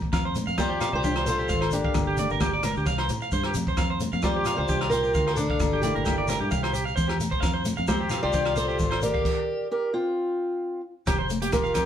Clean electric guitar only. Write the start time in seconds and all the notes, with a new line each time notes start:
0.13 F5
0.25 C5
0.47 F5
0.58 C5
0.70 G4
0.81 F5
0.93 C5
1.04 G4
1.16 C5
1.27 C5
1.39 G4
1.49 F5
1.61 C5
1.85 F5
2.07 G4
2.19 D5
2.31 A#4
2.42 G4
2.53 D5
2.65 A#4
2.77 G4
2.87 F5
2.99 C5
3.10 muted clean electric guitar stroke
3.22 F5
3.33 C5
3.46 G4
3.68 C5
3.78 F5
3.90 C5
4.13 F5
4.24 C5
4.36 G4
4.47 F5
4.58 C5
4.69 G4
4.81 F5
4.91 C5
5.03 G4
5.15 F5
5.27 C5
5.50 F5
5.73 G4
5.83 D5
5.95 A#4
6.05 G4
6.18 D5
6.29 A#4
6.41 G4
6.51 F5
6.63 C5
6.73 G4
6.85 F5
6.96 C5
7.08 G4
7.31 C5
7.40 F5
7.54 C5
7.77 F5
7.88 C5
8.00 G4
8.11 F5
8.23 C5
8.34 G4
8.46 F5
8.56 C5
8.68 G4
8.91 C5
9.14 F5
11.07 G4
11.19 C5
11.42 G4
11.64 F5
11.74 G4